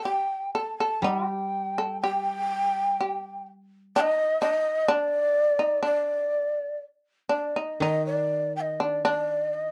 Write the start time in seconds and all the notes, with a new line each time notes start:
0.03 G4 G5
0.55 A4 A5
0.78 A4 A5
1.02 G3 D#4 F#5
1.13 G5
1.27 G4
1.78 A4
2.01 G4 G5
3.00 G4
3.96 D#4 G5
4.00 D#5
4.41 D4 D#5
4.53 D#4
4.88 D4 D5
5.59 D#4
5.83 D4 D5
7.29 D4 D5
7.56 D#4 D#5
7.80 D#3 D#4 D#5
8.06 D5
8.56 G5
8.61 D#5
8.80 D4 D5
9.05 D4 D5
9.54 D#5